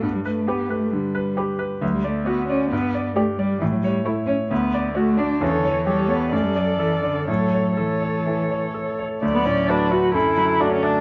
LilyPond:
<<
  \new Staff \with { instrumentName = "Violin" } { \time 4/4 \key g \major \tempo 4 = 132 r4 b'4 r4 b'4 | \key d \major r4 d''4 r4 d''4 | r4 cis''4 r4 d''4 | cis''4 cis''4 d''2 |
cis''4 cis''2~ cis''8 r8 | d''4 b'4 a'2 | }
  \new Staff \with { instrumentName = "Grand piano" } { \time 4/4 \key g \major g,8 b'8 g'8 b'8 d8 b'8 g'8 b'8 | \key d \major d,8 d''8 fis'8 d''8 g,8 d''8 g'8 d''8 | a,8 cis''8 e'8 cis''8 d,8 d''8 fis'8 d''8 | e,8 cis''8 g'8 cis''8 fis,8 d''8 a'8 d''8 |
a,8 cis''8 a'8 cis''8 e8 cis''8 a'8 cis''8 | d,8 a,8 <a fis' d''>8 a8 fis,8 fis8 <a fis' d''>8 a8 | }
  \new Staff \with { instrumentName = "Viola" } { \time 4/4 \key g \major r4 g'4 r4 g'4 | \key d \major r4 fis'4 r4 g'4 | r4 e'4 r4 fis'4 | a'4 a'4 a'2 |
a'4 a'2~ a'8 r8 | a16 b16 cis'8 d'8 fis'8 e'4 d'16 cis'16 d'8 | }
  \new Staff \with { instrumentName = "Cello" } { \clef bass \time 4/4 \key g \major b16 g16 a8 b8 a8 g4. r8 | \key d \major fis16 g16 a8 b8 cis'8 b4 a8 g8 | e16 fis16 g8 a8 cis'8 b4 a8 d'8 | cis16 d16 e8 g8 b8 a16 g16 fis8 e8 d8 |
fis4 e2~ e8 r8 | fis2 d4 d4 | }
>>